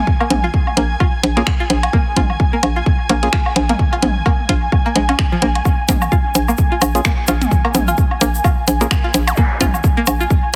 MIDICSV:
0, 0, Header, 1, 7, 480
1, 0, Start_track
1, 0, Tempo, 465116
1, 74, Time_signature, 4, 2, 24, 8
1, 10892, End_track
2, 0, Start_track
2, 0, Title_t, "Ambient pad"
2, 0, Program_c, 0, 92
2, 0, Note_on_c, 0, 80, 85
2, 10892, Note_off_c, 0, 80, 0
2, 10892, End_track
3, 0, Start_track
3, 0, Title_t, "Synth stab"
3, 0, Program_c, 1, 62
3, 1412, Note_on_c, 1, 58, 81
3, 1412, Note_on_c, 1, 61, 77
3, 1412, Note_on_c, 1, 65, 74
3, 1412, Note_on_c, 1, 68, 93
3, 1470, Note_off_c, 1, 58, 0
3, 1470, Note_off_c, 1, 61, 0
3, 1470, Note_off_c, 1, 65, 0
3, 1470, Note_off_c, 1, 68, 0
3, 3332, Note_on_c, 1, 58, 82
3, 3332, Note_on_c, 1, 61, 73
3, 3332, Note_on_c, 1, 65, 73
3, 3332, Note_on_c, 1, 68, 91
3, 3389, Note_off_c, 1, 61, 0
3, 3390, Note_off_c, 1, 58, 0
3, 3390, Note_off_c, 1, 65, 0
3, 3390, Note_off_c, 1, 68, 0
3, 7171, Note_on_c, 1, 61, 77
3, 7172, Note_on_c, 1, 58, 83
3, 7172, Note_on_c, 1, 65, 75
3, 7172, Note_on_c, 1, 68, 91
3, 7229, Note_off_c, 1, 58, 0
3, 7229, Note_off_c, 1, 61, 0
3, 7229, Note_off_c, 1, 65, 0
3, 7229, Note_off_c, 1, 68, 0
3, 9092, Note_on_c, 1, 58, 82
3, 9092, Note_on_c, 1, 61, 76
3, 9092, Note_on_c, 1, 65, 76
3, 9092, Note_on_c, 1, 68, 93
3, 9149, Note_off_c, 1, 58, 0
3, 9149, Note_off_c, 1, 61, 0
3, 9149, Note_off_c, 1, 65, 0
3, 9149, Note_off_c, 1, 68, 0
3, 10892, End_track
4, 0, Start_track
4, 0, Title_t, "Synth pluck"
4, 0, Program_c, 2, 84
4, 212, Note_on_c, 2, 58, 79
4, 233, Note_off_c, 2, 58, 0
4, 452, Note_on_c, 2, 65, 74
4, 484, Note_off_c, 2, 65, 0
4, 794, Note_on_c, 2, 58, 76
4, 820, Note_off_c, 2, 58, 0
4, 1034, Note_on_c, 2, 65, 80
4, 1077, Note_off_c, 2, 65, 0
4, 1413, Note_on_c, 2, 58, 73
4, 1434, Note_off_c, 2, 58, 0
4, 1653, Note_on_c, 2, 65, 74
4, 1684, Note_off_c, 2, 65, 0
4, 1994, Note_on_c, 2, 58, 78
4, 2020, Note_off_c, 2, 58, 0
4, 2235, Note_on_c, 2, 65, 77
4, 2277, Note_off_c, 2, 65, 0
4, 2612, Note_on_c, 2, 58, 76
4, 2633, Note_off_c, 2, 58, 0
4, 2851, Note_on_c, 2, 65, 74
4, 2883, Note_off_c, 2, 65, 0
4, 3194, Note_on_c, 2, 58, 79
4, 3220, Note_off_c, 2, 58, 0
4, 3433, Note_on_c, 2, 65, 78
4, 3476, Note_off_c, 2, 65, 0
4, 3812, Note_on_c, 2, 58, 75
4, 3833, Note_off_c, 2, 58, 0
4, 4052, Note_on_c, 2, 65, 77
4, 4084, Note_off_c, 2, 65, 0
4, 4395, Note_on_c, 2, 58, 81
4, 4420, Note_off_c, 2, 58, 0
4, 4635, Note_on_c, 2, 65, 76
4, 4677, Note_off_c, 2, 65, 0
4, 5013, Note_on_c, 2, 58, 77
4, 5034, Note_off_c, 2, 58, 0
4, 5116, Note_on_c, 2, 56, 78
4, 5141, Note_off_c, 2, 56, 0
4, 5253, Note_on_c, 2, 61, 75
4, 5273, Note_off_c, 2, 61, 0
4, 5493, Note_on_c, 2, 53, 97
4, 5524, Note_off_c, 2, 53, 0
4, 5596, Note_on_c, 2, 58, 76
4, 5621, Note_off_c, 2, 58, 0
4, 6075, Note_on_c, 2, 58, 76
4, 6100, Note_off_c, 2, 58, 0
4, 6315, Note_on_c, 2, 65, 81
4, 6357, Note_off_c, 2, 65, 0
4, 6692, Note_on_c, 2, 58, 76
4, 6712, Note_off_c, 2, 58, 0
4, 6932, Note_on_c, 2, 65, 78
4, 6964, Note_off_c, 2, 65, 0
4, 7274, Note_on_c, 2, 58, 80
4, 7300, Note_off_c, 2, 58, 0
4, 7513, Note_on_c, 2, 65, 78
4, 7556, Note_off_c, 2, 65, 0
4, 7892, Note_on_c, 2, 58, 79
4, 7912, Note_off_c, 2, 58, 0
4, 8132, Note_on_c, 2, 65, 78
4, 8164, Note_off_c, 2, 65, 0
4, 8474, Note_on_c, 2, 58, 76
4, 8500, Note_off_c, 2, 58, 0
4, 8713, Note_on_c, 2, 65, 81
4, 8756, Note_off_c, 2, 65, 0
4, 9091, Note_on_c, 2, 58, 76
4, 9111, Note_off_c, 2, 58, 0
4, 9331, Note_on_c, 2, 65, 74
4, 9363, Note_off_c, 2, 65, 0
4, 9673, Note_on_c, 2, 58, 81
4, 9699, Note_off_c, 2, 58, 0
4, 9915, Note_on_c, 2, 65, 76
4, 9957, Note_off_c, 2, 65, 0
4, 10291, Note_on_c, 2, 58, 77
4, 10312, Note_off_c, 2, 58, 0
4, 10531, Note_on_c, 2, 65, 75
4, 10563, Note_off_c, 2, 65, 0
4, 10892, End_track
5, 0, Start_track
5, 0, Title_t, "FM bass"
5, 0, Program_c, 3, 39
5, 314, Note_on_c, 3, 34, 94
5, 508, Note_off_c, 3, 34, 0
5, 794, Note_on_c, 3, 34, 93
5, 988, Note_off_c, 3, 34, 0
5, 1274, Note_on_c, 3, 34, 90
5, 1468, Note_off_c, 3, 34, 0
5, 1754, Note_on_c, 3, 34, 93
5, 1948, Note_off_c, 3, 34, 0
5, 2234, Note_on_c, 3, 34, 94
5, 2428, Note_off_c, 3, 34, 0
5, 2715, Note_on_c, 3, 34, 91
5, 2908, Note_off_c, 3, 34, 0
5, 3195, Note_on_c, 3, 34, 94
5, 3388, Note_off_c, 3, 34, 0
5, 3674, Note_on_c, 3, 34, 95
5, 3868, Note_off_c, 3, 34, 0
5, 4154, Note_on_c, 3, 34, 99
5, 4348, Note_off_c, 3, 34, 0
5, 4633, Note_on_c, 3, 34, 92
5, 4828, Note_off_c, 3, 34, 0
5, 5114, Note_on_c, 3, 34, 93
5, 5308, Note_off_c, 3, 34, 0
5, 5594, Note_on_c, 3, 34, 98
5, 5788, Note_off_c, 3, 34, 0
5, 6074, Note_on_c, 3, 34, 96
5, 6268, Note_off_c, 3, 34, 0
5, 6554, Note_on_c, 3, 34, 92
5, 6748, Note_off_c, 3, 34, 0
5, 7035, Note_on_c, 3, 34, 93
5, 7229, Note_off_c, 3, 34, 0
5, 7515, Note_on_c, 3, 34, 95
5, 7709, Note_off_c, 3, 34, 0
5, 7994, Note_on_c, 3, 34, 98
5, 8188, Note_off_c, 3, 34, 0
5, 8475, Note_on_c, 3, 34, 91
5, 8669, Note_off_c, 3, 34, 0
5, 8954, Note_on_c, 3, 34, 92
5, 9148, Note_off_c, 3, 34, 0
5, 9435, Note_on_c, 3, 34, 95
5, 9628, Note_off_c, 3, 34, 0
5, 9914, Note_on_c, 3, 34, 95
5, 10108, Note_off_c, 3, 34, 0
5, 10395, Note_on_c, 3, 34, 92
5, 10589, Note_off_c, 3, 34, 0
5, 10892, End_track
6, 0, Start_track
6, 0, Title_t, "Zap"
6, 0, Program_c, 4, 103
6, 9572, Note_on_c, 4, 60, 63
6, 9674, Note_off_c, 4, 60, 0
6, 10892, End_track
7, 0, Start_track
7, 0, Title_t, "Drums"
7, 74, Note_on_c, 9, 36, 108
7, 177, Note_off_c, 9, 36, 0
7, 211, Note_on_c, 9, 77, 70
7, 314, Note_on_c, 9, 42, 86
7, 314, Note_on_c, 9, 45, 86
7, 315, Note_off_c, 9, 77, 0
7, 417, Note_off_c, 9, 42, 0
7, 417, Note_off_c, 9, 45, 0
7, 554, Note_on_c, 9, 36, 109
7, 658, Note_off_c, 9, 36, 0
7, 693, Note_on_c, 9, 77, 43
7, 795, Note_on_c, 9, 42, 89
7, 796, Note_off_c, 9, 77, 0
7, 898, Note_off_c, 9, 42, 0
7, 1034, Note_on_c, 9, 36, 113
7, 1035, Note_on_c, 9, 77, 72
7, 1138, Note_off_c, 9, 36, 0
7, 1138, Note_off_c, 9, 77, 0
7, 1274, Note_on_c, 9, 42, 87
7, 1378, Note_off_c, 9, 42, 0
7, 1412, Note_on_c, 9, 42, 34
7, 1514, Note_on_c, 9, 26, 95
7, 1514, Note_on_c, 9, 36, 110
7, 1514, Note_on_c, 9, 77, 42
7, 1516, Note_off_c, 9, 42, 0
7, 1617, Note_off_c, 9, 26, 0
7, 1617, Note_off_c, 9, 77, 0
7, 1618, Note_off_c, 9, 36, 0
7, 1754, Note_on_c, 9, 42, 85
7, 1857, Note_off_c, 9, 42, 0
7, 1891, Note_on_c, 9, 77, 71
7, 1892, Note_on_c, 9, 42, 34
7, 1994, Note_off_c, 9, 77, 0
7, 1995, Note_off_c, 9, 42, 0
7, 1995, Note_on_c, 9, 36, 108
7, 2098, Note_off_c, 9, 36, 0
7, 2233, Note_on_c, 9, 45, 92
7, 2234, Note_on_c, 9, 42, 85
7, 2235, Note_on_c, 9, 36, 57
7, 2336, Note_off_c, 9, 45, 0
7, 2338, Note_off_c, 9, 36, 0
7, 2338, Note_off_c, 9, 42, 0
7, 2372, Note_on_c, 9, 77, 41
7, 2475, Note_off_c, 9, 77, 0
7, 2475, Note_on_c, 9, 36, 109
7, 2578, Note_off_c, 9, 36, 0
7, 2714, Note_on_c, 9, 42, 83
7, 2714, Note_on_c, 9, 77, 70
7, 2817, Note_off_c, 9, 42, 0
7, 2817, Note_off_c, 9, 77, 0
7, 2954, Note_on_c, 9, 36, 110
7, 3058, Note_off_c, 9, 36, 0
7, 3194, Note_on_c, 9, 42, 84
7, 3195, Note_on_c, 9, 77, 40
7, 3297, Note_off_c, 9, 42, 0
7, 3298, Note_off_c, 9, 77, 0
7, 3332, Note_on_c, 9, 42, 33
7, 3433, Note_on_c, 9, 26, 98
7, 3434, Note_on_c, 9, 36, 108
7, 3435, Note_off_c, 9, 42, 0
7, 3537, Note_off_c, 9, 26, 0
7, 3537, Note_off_c, 9, 36, 0
7, 3572, Note_on_c, 9, 77, 73
7, 3674, Note_on_c, 9, 42, 81
7, 3675, Note_off_c, 9, 77, 0
7, 3777, Note_off_c, 9, 42, 0
7, 3812, Note_on_c, 9, 42, 34
7, 3813, Note_on_c, 9, 45, 84
7, 3914, Note_on_c, 9, 36, 112
7, 3915, Note_off_c, 9, 42, 0
7, 3916, Note_off_c, 9, 45, 0
7, 4017, Note_off_c, 9, 36, 0
7, 4052, Note_on_c, 9, 77, 42
7, 4154, Note_on_c, 9, 42, 87
7, 4154, Note_on_c, 9, 45, 95
7, 4155, Note_off_c, 9, 77, 0
7, 4257, Note_off_c, 9, 42, 0
7, 4257, Note_off_c, 9, 45, 0
7, 4393, Note_on_c, 9, 77, 73
7, 4394, Note_on_c, 9, 36, 114
7, 4497, Note_off_c, 9, 36, 0
7, 4497, Note_off_c, 9, 77, 0
7, 4634, Note_on_c, 9, 36, 58
7, 4634, Note_on_c, 9, 42, 84
7, 4737, Note_off_c, 9, 36, 0
7, 4738, Note_off_c, 9, 42, 0
7, 4874, Note_on_c, 9, 36, 110
7, 4874, Note_on_c, 9, 77, 41
7, 4977, Note_off_c, 9, 36, 0
7, 4977, Note_off_c, 9, 77, 0
7, 5114, Note_on_c, 9, 42, 85
7, 5217, Note_off_c, 9, 42, 0
7, 5251, Note_on_c, 9, 77, 72
7, 5252, Note_on_c, 9, 42, 33
7, 5353, Note_on_c, 9, 26, 103
7, 5354, Note_off_c, 9, 77, 0
7, 5354, Note_on_c, 9, 36, 113
7, 5355, Note_off_c, 9, 42, 0
7, 5457, Note_off_c, 9, 26, 0
7, 5457, Note_off_c, 9, 36, 0
7, 5594, Note_on_c, 9, 42, 85
7, 5697, Note_off_c, 9, 42, 0
7, 5732, Note_on_c, 9, 42, 35
7, 5732, Note_on_c, 9, 77, 41
7, 5834, Note_off_c, 9, 77, 0
7, 5834, Note_on_c, 9, 36, 112
7, 5834, Note_on_c, 9, 77, 43
7, 5835, Note_off_c, 9, 42, 0
7, 5837, Note_on_c, 9, 82, 33
7, 5937, Note_off_c, 9, 36, 0
7, 5937, Note_off_c, 9, 77, 0
7, 5940, Note_off_c, 9, 82, 0
7, 6073, Note_on_c, 9, 45, 93
7, 6074, Note_on_c, 9, 36, 61
7, 6074, Note_on_c, 9, 42, 91
7, 6078, Note_on_c, 9, 82, 87
7, 6176, Note_off_c, 9, 45, 0
7, 6177, Note_off_c, 9, 36, 0
7, 6178, Note_off_c, 9, 42, 0
7, 6181, Note_off_c, 9, 82, 0
7, 6207, Note_on_c, 9, 82, 52
7, 6210, Note_on_c, 9, 77, 76
7, 6310, Note_off_c, 9, 82, 0
7, 6313, Note_off_c, 9, 77, 0
7, 6314, Note_on_c, 9, 36, 117
7, 6316, Note_on_c, 9, 82, 35
7, 6417, Note_off_c, 9, 36, 0
7, 6419, Note_off_c, 9, 82, 0
7, 6553, Note_on_c, 9, 82, 86
7, 6555, Note_on_c, 9, 42, 89
7, 6657, Note_off_c, 9, 82, 0
7, 6658, Note_off_c, 9, 42, 0
7, 6691, Note_on_c, 9, 77, 41
7, 6693, Note_on_c, 9, 82, 58
7, 6785, Note_off_c, 9, 82, 0
7, 6785, Note_on_c, 9, 82, 41
7, 6794, Note_off_c, 9, 77, 0
7, 6794, Note_on_c, 9, 36, 113
7, 6889, Note_off_c, 9, 82, 0
7, 6897, Note_off_c, 9, 36, 0
7, 7033, Note_on_c, 9, 77, 77
7, 7035, Note_on_c, 9, 42, 89
7, 7037, Note_on_c, 9, 82, 82
7, 7137, Note_off_c, 9, 77, 0
7, 7138, Note_off_c, 9, 42, 0
7, 7140, Note_off_c, 9, 82, 0
7, 7172, Note_on_c, 9, 42, 35
7, 7178, Note_on_c, 9, 82, 53
7, 7273, Note_off_c, 9, 82, 0
7, 7273, Note_on_c, 9, 82, 40
7, 7274, Note_on_c, 9, 36, 115
7, 7275, Note_on_c, 9, 26, 103
7, 7276, Note_off_c, 9, 42, 0
7, 7376, Note_off_c, 9, 82, 0
7, 7377, Note_off_c, 9, 36, 0
7, 7378, Note_off_c, 9, 26, 0
7, 7507, Note_on_c, 9, 82, 84
7, 7514, Note_on_c, 9, 42, 87
7, 7514, Note_on_c, 9, 77, 43
7, 7610, Note_off_c, 9, 82, 0
7, 7617, Note_off_c, 9, 77, 0
7, 7618, Note_off_c, 9, 42, 0
7, 7652, Note_on_c, 9, 45, 90
7, 7653, Note_on_c, 9, 42, 36
7, 7656, Note_on_c, 9, 82, 47
7, 7754, Note_on_c, 9, 36, 121
7, 7755, Note_off_c, 9, 45, 0
7, 7756, Note_off_c, 9, 42, 0
7, 7757, Note_off_c, 9, 82, 0
7, 7757, Note_on_c, 9, 82, 40
7, 7858, Note_off_c, 9, 36, 0
7, 7860, Note_off_c, 9, 82, 0
7, 7891, Note_on_c, 9, 77, 78
7, 7993, Note_on_c, 9, 45, 94
7, 7993, Note_on_c, 9, 82, 91
7, 7994, Note_off_c, 9, 77, 0
7, 7994, Note_on_c, 9, 42, 92
7, 8096, Note_off_c, 9, 45, 0
7, 8096, Note_off_c, 9, 82, 0
7, 8097, Note_off_c, 9, 42, 0
7, 8129, Note_on_c, 9, 82, 53
7, 8231, Note_off_c, 9, 82, 0
7, 8231, Note_on_c, 9, 82, 37
7, 8234, Note_on_c, 9, 36, 115
7, 8334, Note_off_c, 9, 82, 0
7, 8337, Note_off_c, 9, 36, 0
7, 8371, Note_on_c, 9, 77, 46
7, 8474, Note_on_c, 9, 42, 92
7, 8475, Note_off_c, 9, 77, 0
7, 8477, Note_on_c, 9, 82, 96
7, 8577, Note_off_c, 9, 42, 0
7, 8580, Note_off_c, 9, 82, 0
7, 8615, Note_on_c, 9, 82, 52
7, 8714, Note_on_c, 9, 36, 117
7, 8715, Note_on_c, 9, 77, 80
7, 8717, Note_off_c, 9, 82, 0
7, 8717, Note_on_c, 9, 82, 43
7, 8817, Note_off_c, 9, 36, 0
7, 8818, Note_off_c, 9, 77, 0
7, 8821, Note_off_c, 9, 82, 0
7, 8954, Note_on_c, 9, 42, 91
7, 8955, Note_on_c, 9, 82, 86
7, 9057, Note_off_c, 9, 42, 0
7, 9058, Note_off_c, 9, 82, 0
7, 9092, Note_on_c, 9, 42, 35
7, 9093, Note_on_c, 9, 82, 55
7, 9194, Note_on_c, 9, 36, 120
7, 9194, Note_on_c, 9, 77, 44
7, 9195, Note_off_c, 9, 42, 0
7, 9195, Note_on_c, 9, 26, 106
7, 9196, Note_off_c, 9, 82, 0
7, 9204, Note_on_c, 9, 82, 39
7, 9297, Note_off_c, 9, 36, 0
7, 9297, Note_off_c, 9, 77, 0
7, 9298, Note_off_c, 9, 26, 0
7, 9307, Note_off_c, 9, 82, 0
7, 9435, Note_on_c, 9, 42, 90
7, 9437, Note_on_c, 9, 82, 88
7, 9538, Note_off_c, 9, 42, 0
7, 9540, Note_off_c, 9, 82, 0
7, 9571, Note_on_c, 9, 77, 77
7, 9572, Note_on_c, 9, 42, 37
7, 9573, Note_on_c, 9, 82, 53
7, 9666, Note_off_c, 9, 82, 0
7, 9666, Note_on_c, 9, 82, 36
7, 9674, Note_off_c, 9, 77, 0
7, 9674, Note_on_c, 9, 36, 123
7, 9676, Note_off_c, 9, 42, 0
7, 9769, Note_off_c, 9, 82, 0
7, 9777, Note_off_c, 9, 36, 0
7, 9913, Note_on_c, 9, 45, 93
7, 9914, Note_on_c, 9, 36, 65
7, 9914, Note_on_c, 9, 42, 95
7, 9918, Note_on_c, 9, 82, 94
7, 10016, Note_off_c, 9, 45, 0
7, 10017, Note_off_c, 9, 36, 0
7, 10017, Note_off_c, 9, 42, 0
7, 10021, Note_off_c, 9, 82, 0
7, 10052, Note_on_c, 9, 77, 46
7, 10056, Note_on_c, 9, 82, 54
7, 10153, Note_off_c, 9, 82, 0
7, 10153, Note_on_c, 9, 82, 39
7, 10154, Note_on_c, 9, 36, 124
7, 10155, Note_off_c, 9, 77, 0
7, 10256, Note_off_c, 9, 82, 0
7, 10257, Note_off_c, 9, 36, 0
7, 10390, Note_on_c, 9, 82, 101
7, 10394, Note_on_c, 9, 42, 96
7, 10394, Note_on_c, 9, 77, 79
7, 10493, Note_off_c, 9, 82, 0
7, 10497, Note_off_c, 9, 42, 0
7, 10497, Note_off_c, 9, 77, 0
7, 10532, Note_on_c, 9, 82, 53
7, 10634, Note_on_c, 9, 36, 123
7, 10635, Note_off_c, 9, 82, 0
7, 10635, Note_on_c, 9, 82, 43
7, 10737, Note_off_c, 9, 36, 0
7, 10738, Note_off_c, 9, 82, 0
7, 10892, End_track
0, 0, End_of_file